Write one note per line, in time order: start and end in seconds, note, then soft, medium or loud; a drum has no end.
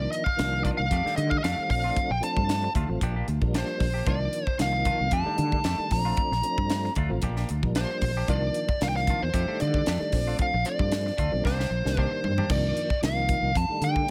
0.00 0.24 D#3 medium
0.00 0.24 F3 medium
0.00 0.24 A#3 medium
0.00 0.25 D4 medium
0.12 0.24 D#5 medium
0.12 closed hi-hat medium
0.24 0.64 F5 medium
0.24 muted fretless electric bass stroke soft
0.24 muted clean electric guitar stroke soft
0.24 kick medium
0.36 0.69 C2 medium
0.36 0.86 D#3 medium
0.36 0.86 F3 medium
0.36 0.86 A#3 medium
0.36 0.87 D4 medium
0.36 muted clean electric guitar stroke soft
0.36 snare loud
0.36 closed hi-hat medium
0.53 muted clean electric guitar stroke soft
0.64 0.78 D#3 medium
0.64 0.79 A#3 medium
0.64 0.79 D4 medium
0.64 0.79 F4 medium
0.64 0.69 D5 medium
0.64 kick medium
0.64 closed hi-hat medium
0.77 0.88 C2 medium
0.77 1.16 F5 medium
0.91 1.01 F2 medium
0.91 1.05 D#3 medium
0.91 1.05 A3 medium
0.91 1.05 D4 medium
0.91 1.05 G4 medium
0.91 kick medium
0.91 closed hi-hat medium
1.03 1.42 D#3 medium
1.03 1.17 D#3 medium
1.03 1.42 G3 medium
1.03 1.42 A3 medium
1.03 1.18 A3 medium
1.03 1.43 D4 medium
1.03 1.18 D4 medium
1.03 1.18 G4 medium
1.03 muted fretless electric bass stroke soft
1.03 snare soft
1.16 1.37 D3 medium
1.16 1.30 D#5 medium
1.16 muted clean electric guitar stroke soft
1.16 closed hi-hat medium
1.30 1.37 F5 medium
1.30 kick medium
1.38 1.43 D#5 medium
1.43 1.54 F2 medium
1.43 1.58 D#3 medium
1.43 1.58 A3 medium
1.43 1.58 D4 medium
1.43 1.57 G4 medium
1.43 1.70 F5 medium
1.43 snare loud
1.43 closed hi-hat medium
1.56 1.69 D#3 medium
1.56 1.69 G3 medium
1.56 1.66 A3 medium
1.56 1.66 C4 medium
1.56 muted fretless electric bass stroke soft
1.56 muted clean electric guitar stroke soft
1.67 1.90 A#1 medium
1.67 2.11 F3 medium
1.67 2.11 A3 medium
1.67 2.11 C4 medium
1.67 2.12 D4 medium
1.67 2.12 F5 medium
1.67 muted clean electric guitar stroke soft
1.67 kick medium
1.67 open hi-hat medium
1.84 2.00 A3 soft
1.84 1.99 D4 soft
1.84 1.99 F4 medium
1.96 kick loud
1.96 closed hi-hat medium
2.10 2.19 A#1 medium
2.10 2.23 G5 medium
2.10 muted clean electric guitar stroke soft
2.21 2.70 F3 medium
2.21 2.70 A3 medium
2.21 2.71 C4 medium
2.21 2.71 D4 medium
2.21 2.72 A5 medium
2.21 closed hi-hat medium
2.37 2.66 G2 medium
2.37 muted clean electric guitar stroke soft
2.37 kick medium
2.49 muted clean electric guitar stroke soft
2.49 snare loud
2.49 closed hi-hat medium
2.64 muted clean electric guitar stroke soft
2.75 2.86 D2 medium
2.75 2.89 F3 medium
2.75 2.89 A3 medium
2.75 2.88 D4 medium
2.75 2.88 F4 medium
2.75 kick medium
2.75 closed hi-hat medium
2.87 2.98 A1 medium
2.87 3.00 F3 medium
2.87 3.01 A3 medium
2.87 3.01 C4 medium
2.87 3.01 F4 medium
2.87 muted clean electric guitar stroke soft
3.01 3.21 A#1 medium
3.01 3.16 F3 medium
3.01 3.15 A#3 medium
3.01 3.15 D4 medium
3.01 3.15 G4 medium
3.01 kick medium
3.01 closed hi-hat medium
3.16 3.27 F3 medium
3.16 3.27 A#3 medium
3.16 3.27 D4 medium
3.16 3.28 G4 medium
3.28 3.38 D2 medium
3.28 closed hi-hat soft
3.41 3.62 A#1 medium
3.41 3.89 F3 medium
3.41 3.90 G3 medium
3.41 3.90 A#3 medium
3.41 3.90 D4 medium
3.41 kick medium
3.54 3.68 F3 medium
3.54 3.67 A#3 medium
3.54 3.67 D4 medium
3.54 3.67 G4 medium
3.54 4.08 C5 medium
3.54 snare loud
3.54 closed hi-hat medium
3.68 muted clean electric guitar stroke soft
3.80 4.00 A#1 medium
3.80 muted clean electric guitar stroke soft
3.80 kick medium
3.80 snare soft
3.80 open hi-hat medium
3.94 4.05 A#3 soft
3.94 4.06 D4 soft
3.94 4.06 G4 soft
4.05 4.27 C2 medium
4.05 4.45 D#3 medium
4.05 4.21 D#3 medium
4.05 4.46 F3 medium
4.05 4.20 A#3 medium
4.05 4.46 A#3 medium
4.05 4.46 D4 medium
4.05 4.20 D4 medium
4.05 4.19 F4 medium
4.05 4.57 D5 medium
4.05 kick medium
4.05 closed hi-hat medium
4.33 closed hi-hat medium
4.47 muted clean electric guitar stroke soft
4.47 muted fretless electric bass stroke soft
4.47 kick medium
4.58 4.90 C2 medium
4.58 5.08 D#3 medium
4.58 5.08 F3 medium
4.58 5.08 A#3 medium
4.58 5.08 D#4 medium
4.58 5.15 F5 medium
4.58 muted clean electric guitar stroke soft
4.58 snare medium
4.58 closed hi-hat medium
4.72 muted clean electric guitar stroke soft
4.85 5.00 D#3 medium
4.85 4.99 A#3 medium
4.85 4.99 D4 medium
4.85 4.98 F4 medium
4.85 kick medium
4.85 closed hi-hat medium
5.00 5.10 C2 medium
5.00 muted clean electric guitar stroke soft
5.11 5.22 F2 medium
5.11 5.25 D#3 medium
5.11 5.25 A3 medium
5.11 5.25 D4 medium
5.11 5.25 G4 medium
5.11 5.92 A5 medium
5.11 kick medium
5.11 closed hi-hat medium
5.24 5.63 D#3 medium
5.24 5.37 D#3 medium
5.24 5.63 G3 medium
5.24 5.64 A3 medium
5.24 5.37 A3 medium
5.24 5.64 D4 medium
5.24 5.37 D4 medium
5.24 5.37 G4 medium
5.24 muted fretless electric bass stroke soft
5.38 5.58 D3 medium
5.38 muted clean electric guitar stroke soft
5.38 closed hi-hat medium
5.52 kick medium
5.64 5.75 F2 medium
5.64 5.78 D#3 medium
5.64 5.78 A3 medium
5.64 5.78 D4 medium
5.64 5.78 G4 medium
5.64 snare medium
5.64 closed hi-hat medium
5.78 5.91 D#3 medium
5.78 5.91 G3 medium
5.78 5.90 A3 medium
5.78 5.91 D4 medium
5.78 muted fretless electric bass stroke soft
5.78 muted clean electric guitar stroke soft
5.91 6.11 A#1 medium
5.91 6.34 F3 medium
5.91 6.34 A3 medium
5.91 6.34 C4 medium
5.91 6.35 D4 medium
5.91 6.93 A#5 medium
5.91 muted clean electric guitar stroke soft
5.91 kick medium
5.91 snare soft
5.91 open hi-hat medium
6.05 6.21 A3 soft
6.05 6.21 D4 soft
6.05 6.20 F4 soft
6.17 kick loud
6.17 closed hi-hat medium
6.31 6.41 A#1 medium
6.31 muted clean electric guitar stroke soft
6.31 snare soft
6.42 6.92 F3 medium
6.42 6.92 A3 medium
6.42 6.92 C4 medium
6.42 6.93 D4 medium
6.42 closed hi-hat medium
6.58 6.87 G2 medium
6.58 muted clean electric guitar stroke soft
6.58 kick medium
6.70 muted clean electric guitar stroke soft
6.70 snare loud
6.70 closed hi-hat medium
6.84 muted clean electric guitar stroke soft
6.84 snare soft
6.95 7.07 D2 medium
6.95 7.10 F3 medium
6.95 7.11 A3 medium
6.95 7.10 D4 medium
6.95 7.10 F4 medium
6.95 kick medium
6.95 closed hi-hat medium
7.09 7.20 A1 medium
7.09 7.22 F3 medium
7.09 7.22 A3 medium
7.09 7.22 C4 medium
7.09 7.23 F4 medium
7.09 muted clean electric guitar stroke soft
7.22 7.43 A#1 medium
7.22 7.37 F3 medium
7.22 7.36 A#3 medium
7.22 7.36 D4 medium
7.22 7.36 G4 medium
7.22 kick medium
7.22 closed hi-hat medium
7.36 7.49 F3 medium
7.36 7.49 A#3 medium
7.36 7.49 D4 medium
7.36 7.49 G4 medium
7.36 snare soft
7.49 7.60 D2 medium
7.49 muted clean electric guitar stroke soft
7.49 closed hi-hat medium
7.62 7.83 A#1 medium
7.62 8.11 F3 medium
7.62 8.11 G3 medium
7.62 8.11 A#3 medium
7.62 8.12 D4 medium
7.62 kick medium
7.75 7.90 F3 medium
7.75 7.90 A#3 medium
7.75 7.90 D4 medium
7.75 7.90 G4 medium
7.75 8.29 C5 medium
7.75 snare loud
7.75 closed hi-hat medium
7.91 muted clean electric guitar stroke soft
8.01 8.22 A#1 medium
8.01 muted clean electric guitar stroke soft
8.01 kick medium
8.01 open hi-hat medium
8.17 8.28 A#3 soft
8.17 8.28 D4 soft
8.17 8.29 G4 soft
8.28 8.48 C2 medium
8.28 8.68 D#3 medium
8.28 8.42 D#3 medium
8.28 8.68 F3 medium
8.28 8.43 A#3 medium
8.28 8.68 A#3 medium
8.28 8.42 D4 medium
8.28 8.68 D4 medium
8.28 8.42 F4 medium
8.28 8.83 D5 medium
8.28 kick medium
8.28 closed hi-hat medium
8.54 closed hi-hat medium
8.68 muted fretless electric bass stroke soft
8.68 muted clean electric guitar stroke soft
8.68 kick medium
8.80 9.12 C2 medium
8.80 9.29 D#3 medium
8.80 9.30 F3 medium
8.80 9.30 A#3 medium
8.80 9.30 D4 medium
8.80 8.88 F5 medium
8.80 muted clean electric guitar stroke soft
8.80 snare loud
8.80 closed hi-hat medium
8.89 8.96 G5 medium
8.96 9.22 F5 loud
8.96 muted clean electric guitar stroke soft
8.96 snare soft
9.07 9.22 D#3 medium
9.07 9.21 A#3 medium
9.07 9.21 D4 medium
9.07 9.21 F4 medium
9.07 kick medium
9.07 closed hi-hat medium
9.22 9.31 E2 medium
9.22 9.61 C5 medium
9.22 muted clean electric guitar stroke soft
9.33 9.44 F2 medium
9.33 9.48 D#3 medium
9.33 9.47 A3 medium
9.33 9.47 D4 medium
9.33 9.47 G4 medium
9.33 kick medium
9.33 closed hi-hat medium
9.48 9.86 D#3 medium
9.48 9.59 D#3 medium
9.48 9.86 G3 medium
9.48 9.59 A3 soft
9.48 9.86 A3 medium
9.48 9.59 D4 medium
9.48 9.86 D4 medium
9.48 9.60 G4 soft
9.48 muted fretless electric bass stroke soft
9.60 9.81 D3 medium
9.60 10.36 D5 medium
9.60 closed hi-hat medium
9.74 kick medium
9.86 9.98 F2 medium
9.86 10.01 D#3 medium
9.86 10.00 A3 medium
9.86 10.00 D4 medium
9.86 9.99 G4 medium
9.86 snare loud
9.86 closed hi-hat medium
9.99 10.12 D#3 medium
9.99 10.12 G3 medium
9.99 10.11 A3 medium
9.99 10.12 D4 medium
9.99 muted clean electric guitar stroke soft
9.99 muted fretless electric bass stroke soft
10.12 10.33 A#1 medium
10.12 10.55 F3 medium
10.12 10.55 A3 medium
10.12 10.55 C4 medium
10.12 10.56 D4 medium
10.12 muted clean electric guitar stroke soft
10.12 kick medium
10.12 snare soft
10.12 open hi-hat medium
10.27 10.43 A3 soft
10.27 10.42 D4 soft
10.27 10.42 F4 soft
10.39 10.67 F5 medium
10.39 kick loud
10.39 closed hi-hat medium
10.54 10.63 A#1 medium
10.54 muted clean electric guitar stroke soft
10.64 11.14 F3 medium
10.64 11.14 A3 medium
10.64 11.14 C4 medium
10.64 11.14 D4 medium
10.64 11.45 D5 medium
10.64 closed hi-hat medium
10.79 11.09 G2 medium
10.79 muted clean electric guitar stroke soft
10.79 kick medium
10.92 muted clean electric guitar stroke soft
10.92 snare loud
10.92 closed hi-hat medium
11.06 muted clean electric guitar stroke soft
11.06 snare soft
11.18 11.29 D2 medium
11.18 11.32 F3 medium
11.18 11.32 A3 medium
11.18 11.32 D4 medium
11.18 11.32 F4 medium
11.18 kick medium
11.18 closed hi-hat medium
11.31 11.42 B1 medium
11.31 11.44 F3 medium
11.31 11.45 A3 medium
11.31 11.45 C4 medium
11.31 11.45 D4 medium
11.31 muted clean electric guitar stroke soft
11.45 11.65 C2 medium
11.45 11.59 D#3 medium
11.45 11.59 A#3 medium
11.45 11.58 D4 medium
11.45 11.58 G4 medium
11.45 11.98 C5 medium
11.45 kick medium
11.45 snare medium
11.59 11.70 D#3 soft
11.59 11.70 A#3 soft
11.59 11.70 D4 medium
11.59 11.71 G4 medium
11.59 snare soft
11.70 11.81 A#1 medium
11.70 muted clean electric guitar stroke soft
11.84 12.05 C2 medium
11.84 12.32 D#3 medium
11.84 12.33 G3 medium
11.84 12.33 A#3 medium
11.84 12.33 D4 medium
11.84 snare medium
11.97 12.11 D#3 medium
11.97 12.11 A#3 medium
11.97 12.11 D4 medium
11.97 12.10 G4 medium
11.97 12.51 C5 medium
11.97 kick medium
12.11 muted clean electric guitar stroke soft
12.24 12.44 G2 medium
12.24 muted clean electric guitar stroke soft
12.24 floor tom medium
12.38 12.51 A#3 soft
12.38 12.50 D4 soft
12.38 12.50 G4 soft
12.38 floor tom medium
12.49 12.70 C2 medium
12.49 12.89 D#3 medium
12.49 12.89 F3 medium
12.49 12.89 A#3 medium
12.49 12.90 D4 medium
12.49 13.00 D5 medium
12.49 kick loud
12.49 crash medium
12.77 closed hi-hat medium
12.90 muted fretless electric bass stroke soft
12.90 kick medium
13.02 13.33 C2 medium
13.02 13.51 D#3 medium
13.02 13.51 F3 medium
13.02 13.52 A#3 medium
13.02 13.52 D#4 medium
13.02 13.58 F5 medium
13.02 snare loud
13.02 closed hi-hat medium
13.29 kick medium
13.29 closed hi-hat medium
13.42 13.52 C2 medium
13.55 13.66 F2 loud
13.55 13.83 A5 medium
13.55 kick medium
13.55 closed hi-hat medium
13.69 14.07 D#3 medium
13.69 14.07 G3 medium
13.69 14.07 A3 medium
13.69 14.08 D4 medium
13.69 muted fretless electric bass stroke soft
13.81 14.01 D3 medium
13.81 14.10 G5 medium
13.81 closed hi-hat medium
13.96 kick medium